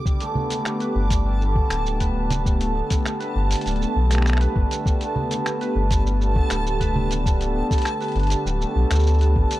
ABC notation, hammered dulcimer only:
X:1
M:4/4
L:1/16
Q:1/4=100
K:G
V:1 name="Hammered dulcimer"
G, A, B, A,2 B D2 G, A, B, A,2 B D2 | G, A, B, A,2 B D2 G, A, B, A,2 B D2 | G, A, B, A,2 B D2 G, A, B, A,2 B D2 | G, A, B, A,2 B D2 G, A, B, A,2 B D2 |]